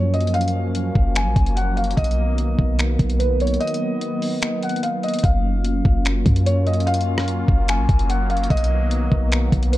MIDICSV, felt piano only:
0, 0, Header, 1, 2, 480
1, 0, Start_track
1, 0, Key_signature, 6, "major"
1, 0, Tempo, 408163
1, 400, Time_signature, 4, 2, 24, 8
1, 11498, End_track
2, 0, Start_track
2, 0, Title_t, "Felt piano"
2, 0, Program_c, 0, 0
2, 0, Note_on_c, 0, 73, 88
2, 148, Note_off_c, 0, 73, 0
2, 161, Note_on_c, 0, 75, 81
2, 389, Note_off_c, 0, 75, 0
2, 397, Note_on_c, 0, 77, 109
2, 1312, Note_off_c, 0, 77, 0
2, 1368, Note_on_c, 0, 80, 81
2, 1816, Note_off_c, 0, 80, 0
2, 1839, Note_on_c, 0, 78, 88
2, 2068, Note_off_c, 0, 78, 0
2, 2078, Note_on_c, 0, 77, 76
2, 2307, Note_off_c, 0, 77, 0
2, 2314, Note_on_c, 0, 75, 103
2, 3230, Note_off_c, 0, 75, 0
2, 3756, Note_on_c, 0, 71, 73
2, 3986, Note_off_c, 0, 71, 0
2, 4014, Note_on_c, 0, 73, 83
2, 4235, Note_off_c, 0, 73, 0
2, 4236, Note_on_c, 0, 75, 108
2, 5391, Note_off_c, 0, 75, 0
2, 5446, Note_on_c, 0, 78, 77
2, 5671, Note_off_c, 0, 78, 0
2, 5680, Note_on_c, 0, 77, 78
2, 5908, Note_off_c, 0, 77, 0
2, 5921, Note_on_c, 0, 75, 87
2, 6149, Note_off_c, 0, 75, 0
2, 6154, Note_on_c, 0, 77, 94
2, 7070, Note_off_c, 0, 77, 0
2, 7599, Note_on_c, 0, 73, 89
2, 7828, Note_off_c, 0, 73, 0
2, 7840, Note_on_c, 0, 75, 89
2, 8068, Note_off_c, 0, 75, 0
2, 8075, Note_on_c, 0, 77, 111
2, 8991, Note_off_c, 0, 77, 0
2, 9046, Note_on_c, 0, 80, 88
2, 9495, Note_off_c, 0, 80, 0
2, 9518, Note_on_c, 0, 78, 84
2, 9747, Note_off_c, 0, 78, 0
2, 9758, Note_on_c, 0, 77, 84
2, 9987, Note_off_c, 0, 77, 0
2, 9998, Note_on_c, 0, 75, 109
2, 10912, Note_off_c, 0, 75, 0
2, 11435, Note_on_c, 0, 71, 76
2, 11498, Note_off_c, 0, 71, 0
2, 11498, End_track
0, 0, End_of_file